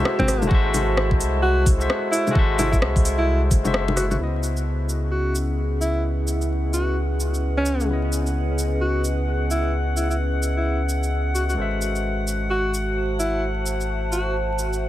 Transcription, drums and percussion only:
0.05 cross-stick loud
0.19 kick medium
0.19 low bongo soft
0.28 cross-stick medium
0.28 open hi-hat medium
0.28 shaker medium
0.42 low bongo soft
0.42 shaker soft
0.51 kick loud
0.74 open hi-hat medium
0.74 low bongo soft
0.74 shaker medium
0.97 cross-stick loud
1.11 kick loud
1.21 open hi-hat medium
1.21 shaker medium
1.66 kick loud
1.66 open hi-hat medium
1.66 shaker medium
1.81 shaker soft
1.90 cross-stick loud
2.13 open hi-hat medium
2.13 shaker medium
2.27 low bongo soft
2.27 shaker soft
2.35 kick loud
2.59 open hi-hat medium
2.59 low bongo soft
2.59 shaker medium
2.73 kick medium
2.73 shaker soft
2.82 cross-stick loud
2.96 kick loud
2.96 open hi-hat soft
3.05 open hi-hat medium
3.05 shaker medium
3.51 kick loud
3.51 open hi-hat medium
3.51 shaker medium
3.65 low bongo soft
3.65 shaker soft
3.74 cross-stick loud
3.88 low bongo medium
3.97 cross-stick medium
3.97 open hi-hat medium
3.97 shaker medium
4.11 low bongo soft
4.11 shaker soft
4.43 shaker soft
4.57 shaker soft
4.89 shaker soft
5.35 shaker medium
5.82 shaker soft
6.28 shaker soft
6.42 shaker soft
6.74 shaker soft
7.20 shaker medium
7.34 shaker soft
7.66 shaker medium
7.80 shaker soft
8.12 shaker medium
8.27 shaker soft
8.59 shaker soft
9.04 shaker medium
9.51 shaker medium
9.97 shaker soft
10.11 shaker soft
10.43 shaker soft
10.89 shaker medium
11.03 shaker soft
11.35 shaker soft
11.50 shaker soft
11.82 shaker soft
11.96 shaker soft
12.27 shaker soft
12.74 shaker soft
13.20 shaker soft
13.66 shaker soft
13.81 shaker soft
14.12 shaker soft
14.59 shaker soft
14.73 shaker soft

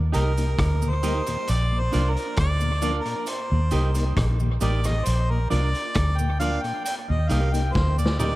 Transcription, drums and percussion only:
0.13 closed hi-hat medium
0.13 cabasa soft
0.37 closed hi-hat medium
0.37 cabasa medium
0.59 kick loud
0.59 cross-stick loud
0.59 closed hi-hat medium
0.82 cabasa medium
1.03 closed hi-hat medium
1.03 cabasa medium
1.26 closed hi-hat medium
1.26 cabasa medium
1.47 closed hi-hat loud
1.47 cabasa medium
1.93 closed hi-hat medium
1.93 cabasa soft
2.16 closed hi-hat medium
2.36 kick loud
2.36 cross-stick loud
2.36 closed hi-hat medium
2.60 cabasa medium
2.82 closed hi-hat medium
2.82 cabasa medium
3.05 closed hi-hat soft
3.26 closed hi-hat medium
3.26 cabasa medium
3.71 closed hi-hat medium
3.71 cabasa soft
3.95 closed hi-hat medium
3.95 cabasa medium
4.17 kick loud
4.17 cross-stick loud
4.17 closed hi-hat medium
4.40 cabasa soft
4.61 closed hi-hat medium
4.61 cabasa medium
4.84 cross-stick medium
4.84 closed hi-hat medium
4.84 cabasa medium
5.05 closed hi-hat medium
5.05 cabasa medium
5.51 closed hi-hat medium
5.51 cabasa medium
5.74 closed hi-hat medium
5.94 kick loud
5.94 cross-stick loud
5.94 closed hi-hat loud
6.19 cabasa medium
6.40 closed hi-hat medium
6.40 cabasa medium
6.64 closed hi-hat soft
6.85 closed hi-hat loud
6.85 cabasa medium
7.29 closed hi-hat medium
7.29 cabasa soft
7.54 closed hi-hat medium
7.54 cabasa medium
7.75 kick loud
7.75 snare medium
7.99 cabasa medium
8.06 snare medium
8.19 mid tom medium
8.19 cabasa medium

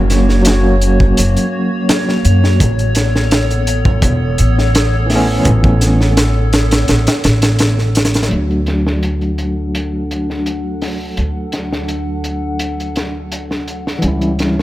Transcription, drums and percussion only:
0.10 snare soft
0.10 closed hi-hat medium
0.29 snare soft
0.45 snare loud
0.45 closed hi-hat loud
0.82 closed hi-hat medium
1.00 kick medium
1.17 closed hi-hat medium
1.37 closed hi-hat soft
1.89 snare loud
1.89 closed hi-hat medium
2.09 snare soft
2.25 closed hi-hat medium
2.44 snare soft
2.60 kick loud
2.60 closed hi-hat medium
2.79 closed hi-hat soft
2.95 snare medium
2.95 closed hi-hat medium
3.16 snare soft
3.31 snare loud
3.31 closed hi-hat medium
3.51 closed hi-hat soft
3.67 closed hi-hat medium
3.85 kick loud
4.02 kick loud
4.02 closed hi-hat medium
4.38 closed hi-hat medium
4.58 snare soft
4.75 snare loud
4.75 closed hi-hat medium
5.10 snare soft
5.10 open hi-hat medium
5.45 kick loud
5.45 closed hi-hat loud
5.64 kick loud
5.81 snare soft
5.81 closed hi-hat medium
6.01 snare soft
6.17 snare loud
6.17 closed hi-hat medium
6.53 snare loud
6.53 closed hi-hat medium
6.71 snare loud
6.71 closed hi-hat medium
6.88 snare loud
6.88 closed hi-hat medium
7.07 snare loud
7.07 closed hi-hat medium
7.24 snare loud
7.24 closed hi-hat medium
7.42 snare loud
7.42 closed hi-hat medium
7.59 snare loud
7.59 closed hi-hat medium
7.78 snare soft
7.95 snare medium
7.95 closed hi-hat medium
8.05 snare medium
8.05 closed hi-hat medium
8.14 snare medium
8.14 closed hi-hat medium
8.23 snare medium
8.23 closed hi-hat medium
8.31 closed hi-hat medium
8.50 closed hi-hat soft
8.66 snare soft
8.66 closed hi-hat medium
8.87 snare soft
9.03 closed hi-hat medium
9.21 closed hi-hat soft
9.38 closed hi-hat medium
9.75 closed hi-hat medium
10.11 closed hi-hat medium
10.30 snare soft
10.46 closed hi-hat medium
10.81 snare soft
10.81 open hi-hat medium
11.17 closed hi-hat medium
11.52 snare soft
11.52 closed hi-hat medium
11.72 snare soft
11.88 closed hi-hat medium
12.24 closed hi-hat medium
12.59 closed hi-hat medium
12.80 closed hi-hat soft
12.96 snare soft
12.96 closed hi-hat medium
13.32 closed hi-hat medium
13.51 snare soft
13.68 closed hi-hat medium
13.87 snare soft
14.02 closed hi-hat medium
14.21 closed hi-hat soft
14.39 snare soft
14.39 closed hi-hat medium
14.59 snare soft

